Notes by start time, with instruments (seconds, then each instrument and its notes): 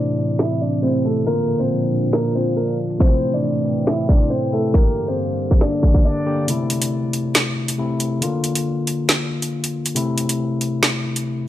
Already playing: analog synth pad A2 E3 C4, tine electric piano C3 A3 E4, grand piano D4 D5
0.18 closed hi-hat
0.39 grand piano E4 E5, finger snap, snare, closed hi-hat
0.61 grand piano D4 D5
0.73 closed hi-hat
0.82 tine electric piano C3 A3 E4, grand piano C4 C5
1.04 grand piano A3 A4, closed hi-hat
1.25 analog synth pad A#2 F3 D4, tine electric piano D3 A#3 F4, grand piano A#3 A#4, closed hi-hat
1.48 closed hi-hat
1.59 grand piano C4 C5, closed hi-hat
1.92 closed hi-hat
2.13 grand piano A#3 A#4, finger snap, snare, closed hi-hat
2.35 grand piano C4 C5
2.47 closed hi-hat
2.56 grand piano A#3 A#4
2.68 closed hi-hat
2.90 closed hi-hat
2.99 analog synth pad A2 E3 C4, tine electric piano C3 A3 E4, grand piano C4 C5, kick, closed hi-hat
3.22 closed hi-hat
3.34 grand piano D4 D5, closed hi-hat
3.65 closed hi-hat
3.87 grand piano E4 E5, finger snap, snare, closed hi-hat
4.09 grand piano D4 D5, kick
4.21 closed hi-hat
4.30 grand piano C4 C5
4.52 tine electric piano C3 A3 E4, grand piano A3 A4, closed hi-hat
4.73 analog synth pad G2 D3 A#3, tine electric piano D3 A#3 G4, grand piano A#3 A#4, kick, closed hi-hat
4.96 closed hi-hat
5.02 closed hi-hat
5.07 grand piano C4 C5, closed hi-hat
5.12 closed hi-hat
5.39 closed hi-hat
5.51 kick
5.61 grand piano D4 D5, finger snap, snare, closed hi-hat
5.83 kick
5.94 kick, closed hi-hat
6.05 grand piano D4 D5
6.26 tine electric piano D3 A#3 G4
6.48 tine electric piano C3 A3 E4, closed hi-hat
6.70 closed hi-hat
6.82 closed hi-hat
7.13 closed hi-hat
7.35 finger snap, snare, closed hi-hat
7.68 closed hi-hat
7.78 tine electric piano C3 A3 E4
8.00 closed hi-hat
8.21 tine electric piano D3 A#3 F4, closed hi-hat
8.44 closed hi-hat
8.55 closed hi-hat
8.87 closed hi-hat
9.09 finger snap, snare, closed hi-hat
9.42 closed hi-hat
9.64 closed hi-hat
9.86 closed hi-hat
9.95 tine electric piano C3 A3 E4, closed hi-hat
10.18 closed hi-hat
10.29 closed hi-hat
10.61 closed hi-hat
10.83 finger snap, snare, closed hi-hat
11.16 closed hi-hat